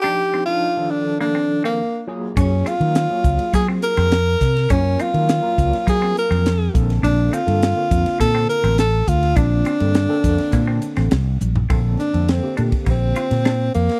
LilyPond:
<<
  \new Staff \with { instrumentName = "Tenor saxophone" } { \time 4/4 \key bes \major \tempo 4 = 103 g'8. f'8. d'8 d'8. bes8. r8 | des'8 f'4. aes'8 bes'4. | des'8 f'4. aes'8 bes'4 r8 | d'8 f'4. a'8 bes'8 a'8 f'8 |
d'2. r4 | r8 d'8 c'8 a8 c'4. bes8 | }
  \new Staff \with { instrumentName = "Clean electric guitar" } { \time 4/4 \key bes \major d'8 c'8 r4 bes16 c'8 c'8 r8. | des'8 c'8 r4 bes16 c'8 c'8 r8. | des'8 c'8 r4 bes16 c'8 c'8 r8. | d'8 c'8 r4 bes16 c'8 c'8 r8. |
d'8 c'8 r4 bes16 c'8 c'8 r8. | c'8 r4 d'8 bes8 f'8 d'8 r8 | }
  \new Staff \with { instrumentName = "Tine electric piano" } { \time 4/4 \key bes \major <f d' ees' g'>8. <f d' ees' a'>8 <ees f d' a'>4.~ <ees f d' a'>16 r8 <ges bes f' aes'>8~ | <ges bes f' aes'>8 r16 <ges bes f' bes'>8 <ges bes f' aes'>4.~ <ges bes f' aes'>16 r4 | <ges bes f' bes'>8. <ges bes f' bes'>8 <ges bes f' bes'>4.~ <ges bes f' bes'>16 r8 <d bes c' a'>8~ | <d bes c' a'>8 r16 <d bes c' a'>8 <d bes c' f'>4.~ <d bes c' f'>16 r4 |
<d bes c' f'>8. <d bes c' a'>8 <d bes c' a'>4.~ <d bes c' a'>16 r4 | <d bes c' a'>8. <d bes c' a'>8 <d bes c' g'>4.~ <d bes c' g'>16 r4 | }
  \new Staff \with { instrumentName = "Fretless electric bass" } { \clef bass \time 4/4 \key bes \major r1 | ges,8 r16 ees8 r16 des,16 r16 ges8 r16 f,8. c8 | ges,8 r16 ees8 r16 des,16 r16 ges8 r16 f,8. bes,,8 | bes,,8 r16 g,8 r16 f,16 r16 bes,8 r16 a,,8. d,8 |
bes,,8 r16 g,8 r16 f,16 r16 bes,8 r16 a,,16 c,8 bes,,8 | bes,,8 r16 f,8 r16 bes,16 r16 bes,,8 r16 bes,8. f,16 r16 | }
  \new DrumStaff \with { instrumentName = "Drums" } \drummode { \time 4/4 r4 r4 r4 r4 | <hhp bd cymr>8 <hhp cymr>16 cymr16 <hhp cymr sn>8 <hhp bd cymr>16 cymr16 <hhp bd cymr>8 <hhp cymr>16 <cymr sn>16 <hhp cymr sn>8 <hhp bd cymr sn>16 <cymr sn>16 | <hhp bd cymr>8 <hhp cymr>16 cymr16 <hhp cymr sn>8 <hhp bd cymr>16 <cymr sn>16 <hhp bd cymr>8 <hhp cymr>16 cymr16 <hhp cymr sn>8 <hhp bd cymr>16 <cymr sn>16 | <hhp cymr>8 <hhp cymr>16 cymr16 <hhp cymr sn>8 <hhp bd cymr>16 <cymr sn>16 <hhp bd cymr>8 <hhp cymr>16 cymr16 <hhp cymr sn>8 <hhp bd cymr>16 <cymr sn>16 |
<hhp bd cymr>8 <hhp cymr>16 cymr16 <hhp cymr sn>8 <hhp bd cymr>16 <cymr sn>16 <hhp bd cymr>8 <hhp cymr>16 <cymr sn>16 <hhp cymr sn>8 <hhp tommh>16 tomfh16 | <bd cymr>8 <hhp cymr>16 cymr16 <cymr sn>8 <hhp cymr>16 <bd cymr>16 <bd cymr>8 <hhp cymr>16 <cymr sn>16 <cymr sn>8 <hhp cymr>16 <cymr sn>16 | }
>>